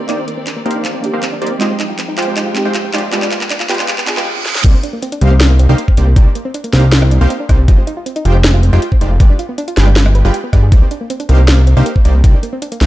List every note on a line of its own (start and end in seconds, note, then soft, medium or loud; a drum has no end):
0.00 1.58 D#3 medium
0.00 1.58 C4 medium
0.00 1.58 A#4 medium
0.00 1.58 D5 medium
0.00 riser medium
0.07 1.00 A#3 medium
0.07 0.22 A#3 medium
0.07 0.13 C4 loud
0.07 0.22 D#4 medium
0.07 1.02 D#4 medium
0.07 0.22 G4 medium
0.07 0.22 C5 medium
0.07 1.01 D5 medium
0.07 0.22 D5 medium
0.07 clap medium
0.07 closed hi-hat medium
0.11 1.02 G4 medium
0.18 0.27 D4 medium
0.28 0.34 A#3 medium
0.28 closed hi-hat medium
0.37 0.44 C4 loud
0.47 0.53 D4 medium
0.47 clap medium
0.47 closed hi-hat medium
0.56 0.63 A#3 medium
0.66 1.11 A#3 medium
0.66 0.70 C4 loud
0.66 1.11 D#4 medium
0.66 1.11 G4 medium
0.66 1.11 C5 medium
0.66 1.11 F5 loud
0.66 closed hi-hat soft
0.71 closed hi-hat medium
0.75 0.84 D4 medium
0.85 0.91 A#3 medium
0.85 clap medium
0.85 closed hi-hat medium
0.94 1.01 C4 loud
1.02 1.57 A#3 medium
1.02 1.58 D4 medium
1.02 1.10 D4 medium
1.02 1.59 D#4 medium
1.02 1.59 G4 medium
1.02 closed hi-hat medium
1.13 1.20 A#3 medium
1.13 1.21 A#3 medium
1.13 1.21 D#4 medium
1.13 1.21 G4 medium
1.13 1.21 C5 medium
1.13 1.21 F5 medium
1.22 1.27 C4 loud
1.22 clap medium
1.22 closed hi-hat medium
1.32 1.41 D4 medium
1.42 1.48 A#3 medium
1.42 1.50 A#3 medium
1.42 1.50 D#4 medium
1.42 1.50 G4 medium
1.42 1.50 C5 medium
1.42 1.50 D5 medium
1.42 closed hi-hat soft
1.47 closed hi-hat medium
1.51 1.58 C4 loud
1.58 4.24 F3 medium
1.58 2.52 G#3 medium
1.58 4.24 G#3 medium
1.58 1.73 G#3 medium
1.58 2.53 C4 medium
1.58 3.11 D#4 medium
1.58 2.54 D#4 medium
1.58 1.67 F4 medium
1.58 1.73 F4 medium
1.58 1.73 G4 medium
1.58 1.73 C5 medium
1.58 1.73 D#5 medium
1.58 4.24 G5 medium
1.58 clap medium
1.58 closed hi-hat medium
1.63 2.54 G4 medium
1.70 1.77 C4 medium
1.79 1.84 D#4 loud
1.79 clap medium
1.79 closed hi-hat medium
1.89 1.98 F4 medium
1.99 2.05 C4 medium
1.99 clap medium
1.99 closed hi-hat medium
2.08 2.15 D#4 loud
2.18 2.63 G#3 medium
2.18 2.24 F4 medium
2.18 2.63 F4 medium
2.18 2.63 G4 medium
2.18 2.63 C5 medium
2.18 2.63 G5 loud
2.18 clap medium
2.18 closed hi-hat soft
2.22 closed hi-hat medium
2.27 2.34 C4 medium
2.36 2.41 D#4 loud
2.36 clap medium
2.36 closed hi-hat medium
2.46 2.55 F4 medium
2.54 3.09 G#3 medium
2.54 3.10 C4 medium
2.54 2.62 C4 medium
2.54 3.11 D#4 medium
2.54 clap medium
2.54 closed hi-hat medium
2.58 3.11 G4 medium
2.65 2.73 G#3 medium
2.65 2.72 D#4 loud
2.65 2.73 F4 medium
2.65 2.73 G4 medium
2.65 2.73 C5 medium
2.65 2.73 G5 medium
2.74 2.81 F4 medium
2.74 clap medium
2.74 closed hi-hat medium
2.84 2.91 C4 medium
2.93 3.02 G#3 medium
2.93 2.98 D#4 loud
2.93 3.02 F4 medium
2.93 3.02 G4 medium
2.93 3.02 C5 medium
2.93 3.02 D5 medium
2.93 clap medium
2.93 closed hi-hat soft
2.98 closed hi-hat medium
3.03 3.12 F4 medium
3.11 3.25 G#3 medium
3.11 4.04 B3 medium
3.11 3.19 B3 medium
3.11 4.25 B3 medium
3.11 4.05 D4 medium
3.11 3.25 F4 medium
3.11 4.06 F4 medium
3.11 3.25 G4 medium
3.11 3.25 B4 medium
3.11 3.25 D5 medium
3.11 clap medium
3.11 closed hi-hat medium
3.15 4.06 G#3 medium
3.22 3.29 D4 loud
3.22 clap medium
3.31 3.38 F4 medium
3.31 clap medium
3.31 closed hi-hat medium
3.41 3.48 B3 medium
3.41 clap medium
3.50 3.54 D4 loud
3.50 clap loud
3.50 closed hi-hat medium
3.60 3.69 F4 medium
3.60 clap medium
3.69 4.15 G#3 medium
3.69 3.76 B3 medium
3.69 4.15 F4 medium
3.69 4.15 G4 medium
3.69 4.15 B4 medium
3.69 4.15 G5 loud
3.69 clap loud
3.69 closed hi-hat soft
3.74 closed hi-hat medium
3.79 3.86 D4 loud
3.79 clap medium
3.88 3.95 F4 medium
3.88 clap loud
3.88 closed hi-hat medium
3.88 reverse cymbal medium
3.98 4.05 B3 medium
3.98 clap medium
4.05 4.61 B3 medium
4.05 4.62 D4 medium
4.05 4.11 D4 loud
4.05 4.63 F4 medium
4.05 clap loud
4.05 closed hi-hat medium
4.09 4.63 G#4 medium
4.17 4.25 G#3 medium
4.17 4.26 F4 medium
4.17 4.25 F4 medium
4.17 4.25 G4 medium
4.17 4.25 B4 medium
4.17 4.25 G5 medium
4.17 clap medium
4.45 snare medium
4.55 snare medium
4.64 4.75 C2 loud
4.64 4.71 A#3 medium
4.64 4.77 A#3 medium
4.64 4.77 D#4 medium
4.64 4.77 G4 medium
4.64 4.77 C5 medium
4.64 4.77 D5 medium
4.64 kick loud
4.64 closed hi-hat medium
4.64 crash loud
4.74 4.81 C4 loud
4.83 4.90 D4 medium
4.83 closed hi-hat medium
4.93 5.00 A#3 medium
5.02 5.06 C4 loud
5.02 closed hi-hat medium
5.12 5.21 D4 medium
5.12 closed hi-hat medium
5.21 5.67 C2 loud
5.21 5.28 A#3 medium
5.21 5.67 A#3 loud
5.21 5.67 D#4 medium
5.21 5.67 G4 medium
5.21 5.67 C5 medium
5.21 5.67 F5 loud
5.21 closed hi-hat medium
5.31 5.38 C4 loud
5.40 5.47 D4 medium
5.40 snare loud
5.40 closed hi-hat medium
5.50 5.57 A#3 medium
5.59 5.63 C4 loud
5.59 closed hi-hat medium
5.69 5.75 C2 loud
5.69 5.77 A#3 medium
5.69 5.78 D4 medium
5.69 5.77 D#4 medium
5.69 5.77 G4 medium
5.69 5.77 C5 medium
5.69 5.77 F5 medium
5.78 5.85 A#3 medium
5.78 closed hi-hat medium
5.88 5.94 C4 loud
5.88 kick medium
5.97 6.15 C2 loud
5.97 6.06 A#3 medium
5.97 6.04 D4 medium
5.97 6.06 D#4 medium
5.97 6.06 G4 medium
5.97 6.06 C5 medium
5.97 6.06 D5 medium
5.97 closed hi-hat medium
6.07 6.13 A#3 medium
6.16 6.27 C2 loud
6.16 6.29 A#3 medium
6.16 6.20 C4 loud
6.16 6.29 D#4 medium
6.16 6.29 G4 medium
6.16 6.29 C5 medium
6.16 6.29 D5 medium
6.16 kick loud
6.16 closed hi-hat medium
6.26 6.35 D4 medium
6.35 6.42 A#3 medium
6.35 closed hi-hat medium
6.45 6.51 C4 loud
6.54 6.61 D4 medium
6.54 closed hi-hat medium
6.64 6.70 A#3 medium
6.64 closed hi-hat medium
6.73 7.19 C2 loud
6.73 7.19 A#3 loud
6.73 6.77 C4 loud
6.73 7.19 D#4 medium
6.73 7.19 G4 medium
6.73 7.19 C5 medium
6.73 7.19 F5 loud
6.73 snare medium
6.73 closed hi-hat medium
6.83 6.92 D4 medium
6.92 6.99 A#3 medium
6.92 snare loud
6.92 closed hi-hat medium
7.02 7.08 C4 loud
7.02 cross-stick medium
7.11 7.18 D4 medium
7.11 closed hi-hat medium
7.21 7.27 C2 loud
7.21 7.27 A#3 medium
7.21 7.29 A#3 medium
7.21 7.29 D#4 medium
7.21 7.29 G4 medium
7.21 7.29 C5 medium
7.21 7.29 F5 medium
7.30 7.34 C4 loud
7.30 closed hi-hat medium
7.40 7.49 D4 medium
7.49 7.66 C2 medium
7.49 7.56 A#3 medium
7.49 7.57 A#3 medium
7.49 7.57 D#4 medium
7.49 7.57 G4 medium
7.49 7.57 C5 medium
7.49 7.57 D5 medium
7.49 kick medium
7.49 cross-stick medium
7.49 closed hi-hat medium
7.59 7.65 C4 loud
7.68 7.79 F1 loud
7.68 7.81 G#3 medium
7.68 7.75 F4 medium
7.68 7.81 F4 medium
7.68 7.81 G4 medium
7.68 7.81 C5 medium
7.68 7.81 D#5 medium
7.68 kick loud
7.68 closed hi-hat medium
7.78 7.84 C4 medium
7.87 7.91 D#4 loud
7.87 closed hi-hat medium
7.97 8.06 F4 medium
8.06 8.13 C4 medium
8.06 closed hi-hat medium
8.16 8.22 D#4 loud
8.16 closed hi-hat medium
8.25 8.71 F1 loud
8.25 8.71 G#3 loud
8.25 8.32 F4 medium
8.25 8.71 F4 medium
8.25 8.71 G4 medium
8.25 8.71 C5 medium
8.25 8.71 G5 loud
8.25 closed hi-hat medium
8.35 8.41 C4 medium
8.44 8.48 D#4 loud
8.44 snare loud
8.44 closed hi-hat medium
8.54 8.63 F4 medium
8.63 8.70 C4 medium
8.63 closed hi-hat medium
8.73 8.79 F1 loud
8.73 8.81 G#3 medium
8.73 8.79 D#4 loud
8.73 8.81 F4 medium
8.73 8.81 G4 medium
8.73 8.81 C5 medium
8.73 8.81 G5 medium
8.82 8.89 F4 medium
8.82 closed hi-hat medium
8.92 8.98 C4 medium
8.92 kick medium
9.01 9.18 F1 loud
9.01 9.09 G#3 medium
9.01 9.05 D#4 loud
9.01 9.09 F4 medium
9.01 9.09 G4 medium
9.01 9.09 C5 medium
9.01 9.09 D5 medium
9.01 closed hi-hat medium
9.11 9.20 F4 medium
9.20 9.31 G1 loud
9.20 9.33 G#3 medium
9.20 9.27 B3 medium
9.20 9.33 F4 medium
9.20 9.33 G4 medium
9.20 9.33 B4 medium
9.20 9.33 D5 medium
9.20 kick loud
9.20 closed hi-hat medium
9.30 9.36 D4 loud
9.39 9.46 F4 medium
9.39 closed hi-hat medium
9.49 9.55 B3 medium
9.58 9.62 D4 loud
9.58 closed hi-hat medium
9.68 9.77 F4 medium
9.68 closed hi-hat medium
9.77 10.23 G1 loud
9.77 10.23 G#3 loud
9.77 9.84 B3 medium
9.77 10.22 F4 medium
9.77 10.22 G4 medium
9.77 10.22 B4 medium
9.77 10.22 G5 loud
9.77 snare medium
9.77 closed hi-hat medium
9.87 9.93 D4 loud
9.96 10.03 F4 medium
9.96 snare loud
9.96 closed hi-hat medium
10.06 10.12 B3 medium
10.06 cross-stick medium
10.15 10.24 B4 medium
10.15 closed hi-hat medium
10.25 10.31 G1 loud
10.25 10.33 G#3 medium
10.25 10.31 D4 medium
10.25 10.33 F4 medium
10.25 10.33 G4 medium
10.25 10.33 B4 medium
10.25 10.33 G5 medium
10.34 10.38 G4 medium
10.34 closed hi-hat medium
10.44 10.50 B3 medium
10.53 10.74 G2 loud
10.53 10.61 G#3 medium
10.53 10.62 B3 loud
10.53 10.61 F4 medium
10.53 10.61 G4 medium
10.53 10.61 B4 medium
10.53 10.61 D5 medium
10.53 kick medium
10.53 cross-stick medium
10.53 closed hi-hat medium
10.63 10.69 G#4 medium
10.72 10.83 C2 loud
10.72 10.79 A#3 medium
10.72 10.85 A#3 medium
10.72 10.85 D#4 medium
10.72 10.85 G4 medium
10.72 10.85 C5 medium
10.72 10.85 D5 medium
10.72 kick loud
10.72 closed hi-hat medium
10.82 10.88 C4 loud
10.91 10.98 D4 medium
10.91 closed hi-hat medium
11.01 11.07 A#3 medium
11.10 11.14 C4 loud
11.10 closed hi-hat medium
11.20 11.29 D4 medium
11.20 closed hi-hat medium
11.29 11.75 C2 loud
11.29 11.74 A#3 medium
11.29 11.36 A#3 medium
11.29 11.74 D#4 medium
11.29 11.74 G4 medium
11.29 11.74 C5 medium
11.29 11.74 F5 loud
11.29 closed hi-hat medium
11.39 11.45 C4 loud
11.48 11.55 D4 medium
11.48 snare loud
11.48 closed hi-hat medium
11.58 11.64 A#3 medium
11.67 11.71 C4 loud
11.67 closed hi-hat medium
11.77 11.83 C2 loud
11.77 11.84 A#3 medium
11.77 11.86 D4 medium
11.77 11.84 D#4 medium
11.77 11.84 G4 medium
11.77 11.84 C5 medium
11.77 11.84 F5 medium
11.86 11.93 A#3 medium
11.86 closed hi-hat medium
11.96 12.02 C4 loud
11.96 kick medium
12.05 12.22 C2 loud
12.05 12.13 A#3 medium
12.05 12.12 D4 medium
12.05 12.13 D#4 medium
12.05 12.13 G4 medium
12.05 12.13 C5 medium
12.05 12.13 D5 medium
12.05 closed hi-hat medium
12.15 12.21 A#3 medium
12.24 12.35 C2 loud
12.24 12.37 A#3 medium
12.24 12.28 C4 loud
12.24 12.37 D#4 medium
12.24 12.37 G4 medium
12.24 12.37 C5 medium
12.24 12.37 D5 medium
12.24 kick loud
12.24 closed hi-hat medium
12.34 12.42 D4 medium
12.43 12.50 A#3 medium
12.43 closed hi-hat medium
12.53 12.59 C4 loud
12.62 12.69 D4 medium
12.62 closed hi-hat medium
12.72 12.78 A#3 medium
12.72 closed hi-hat medium
12.81 12.86 C2 loud
12.81 12.86 A#3 loud
12.81 12.85 C4 loud
12.81 12.86 D#4 medium
12.81 12.86 G4 medium
12.81 12.86 C5 medium
12.81 12.86 F5 loud
12.81 snare medium
12.81 closed hi-hat medium